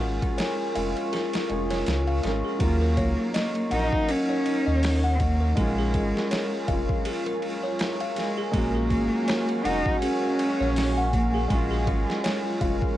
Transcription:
Already playing: G#3 C#4 F4 A#4 G#5 C#6
0.01 G#1 A#4
0.22 kick, ride
0.38 C#5, snare, ride
0.75 F1 G#3 C#4 F4 F5, ride
0.97 ride
1.12 G#4, snare, ride
1.33 A#4, snare, ride
1.49 F1 G#3 C#4 G#4, ride
1.70 C#5, snare, ride
1.86 C#2, snare, ride
2.07 F5, ride
2.23 G#1 G#3 C#4 A#4, snare, ride
2.44 G#4
2.59 D#2 F#3 A#3 C#4 D#4 A#4 F5, kick, ride
2.64 F4
2.81 A#4
2.97 C#2 C#5, kick, ride
3.34 D#5, snare, ride
3.55 ride
3.70 A#1 F#3 A#3 C#4 D#4 F#5, ride
3.93 kick
4.09 C#4 A#4, ride
4.29 C#5
4.46 ride
4.67 D#2 D#5
4.83 snare, open hi-hat
5.04 F#5
5.15 C4
5.20 A#3, kick, ride
5.41 A#4
5.56 A#1 G#3 C#4 F4 G#4 G#5 C#6, kick, ride
5.61 F4
5.78 G#4
5.94 G#1 A#4, kick, ride
6.17 snare
6.31 C#5, snare, ride
6.67 F1 G#3 C#4 F5, kick, ride
6.73 F4
6.89 kick
7.05 G#4, ride
7.26 A#4, ride
7.42 ride
7.63 C#5
7.79 snare, ride
8.00 F5, ride
8.16 G#3, snare, ride
8.37 G#4
8.52 A#1 G#3 A#3 C#4 F#4 G#4, kick, ride
8.58 F#4
8.75 G#4
8.91 G#1 A#4, kick, ride
9.28 C#5, snare, ride
9.49 ride
9.63 F1 G#3 A#3 C#4 D#4 F#5, ride
9.69 F#4
9.86 kick
10.01 C#4 G#4, ride
10.23 A#4
10.39 ride
10.60 A#1 C#5
10.76 snare, open hi-hat
10.97 F#5
11.13 A#3, kick, ride
11.34 G#4
11.48 A#1 G#3 C#4 F4 G#4 A#4, kick, ride
11.54 F4
11.71 G#4
11.87 G#1 A#4, kick, ride
12.10 snare
12.24 C#5, snare, ride
12.59 F1 G#3 C#4 F5, kick, ride
12.65 F4
12.82 kick

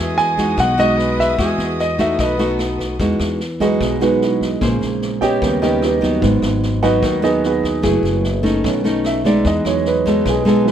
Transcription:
Already playing: E2 E3 G#3 F#4 G#4 E5 D#6
0.17 G#5, snare
0.38 G#3 D#4 F#4, kick, snare
0.57 B1 B2 F#4 F#5, kick, cross-stick, snare
0.78 G#3 D#4 F#4 D#5, snare
0.97 B4, snare
1.19 E5, kick, snare
1.38 E2 E3 G#3 F#4 G#4, kick, cross-stick, snare
1.58 E2, snare
1.79 D#5, snare
1.98 A3 D#4 F#4 E5, kick, snare
2.18 B1 B2 B3 A4 B4 D#5, kick, cross-stick, snare
2.39 A3 D#4 F#4, snare
2.59 cross-stick, snare
2.79 kick, snare
2.99 E2 E3 G#3 D#4 F#4, kick, snare
3.19 E2, cross-stick, snare
3.40 snare
3.60 F#3 G#3 D#4 F#4 G#4 B4 D#5, kick, snare
3.80 B1 B2, kick, cross-stick, snare
4.01 G#3 B3 D#4 F#4 G#4 B4, snare
4.21 G#3 D#4 E4 G#4, snare
4.41 kick, snare
4.60 A#1 C#3 G#3 A#3 C#4 G#4 C5, kick, cross-stick, snare
4.81 A#1, snare
5.02 snare
5.21 B3 C#4 G4 C#5 D#5 G5, kick, snare
5.41 D#2 C#3 D#3 G3 B3, kick, cross-stick, snare
5.62 B3 C#4 D#4 G4 A#4 B4 D#5, snare
5.82 B3 D#4 G4 B4, cross-stick, snare
6.01 F#3 B3 D#4, kick, snare
6.21 G#1 G#2 D#3 F#3 B3, kick, snare
6.42 G#1, cross-stick, snare
6.62 snare
6.83 F#3 B3 D#4 F#4 B4 D#5 F#5, kick, snare
7.02 D#2 D#3, kick, cross-stick, snare
7.22 F#3 B3 D#4 G#4 B4 D#5, snare
7.43 B3 F#4 G#4 B4, snare
7.63 kick, snare
7.82 F#1 E3 F#3 A3 E4 G#4, kick, cross-stick, snare
8.03 F#1, snare
8.24 snare
8.43 A3 C#4 D#4, kick, snare
8.63 B1 B2 D#3 A3 C#4, kick, cross-stick, snare
8.84 A3 C#4 D#4, snare
9.05 E5, cross-stick, snare
9.25 G#3 B3 D#4 D5, kick, snare
9.44 E2 E3 D#5, kick, snare
9.65 E2 F#3 G#3 D#4 C#5, cross-stick, snare
9.85 B4, snare
10.06 G#3 B3 D#4 A4, kick, snare
10.25 B1 B2 G#4, kick, cross-stick, snare
10.45 G#3 B3 D#4 A4, snare
10.65 F#3 G#3 D#4 B4, snare

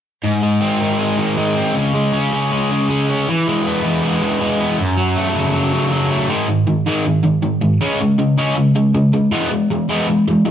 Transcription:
0.24 G#2
0.43 G#3
0.61 C4
0.80 D#3
0.99 G#3
1.17 D#3
1.37 G#3
1.56 C4
1.74 C#3
1.94 G#3
2.12 C#4
2.33 C#3
2.52 G#3
2.71 C#3
2.90 G#3
3.10 C#4
3.29 E3
3.47 G#3
3.67 B3
3.84 E3
4.03 G#3
4.22 E3
4.41 G#3
4.60 B3
4.79 F#2
4.97 F#3
5.16 A3
5.35 C#3
5.54 F#3
5.73 C#3
5.91 F#3
6.11 A3
6.29 G#2 D#3 G#3
6.48 G#2 D#3
6.68 G#2 D#3
6.87 G#2 D#3 G#3
7.06 G#2 D#3
7.24 G#2 D#3
7.43 G#2 D#3
7.61 G#2 D#3
7.81 C#3 G#3 C#4
8.01 C#3 G#3
8.18 C#3 G#3
8.38 C#3 G#3 C#4
8.55 C#3 G#3
8.75 C#3 G#3
8.95 C#3 G#3
9.14 C#3 G#3
9.32 E3 G#3 B3
9.51 E3 G#3
9.70 E3 G#3
9.89 E3 G#3 B3
10.08 E3 G#3
10.28 E3 G#3
10.45 E3 G#3

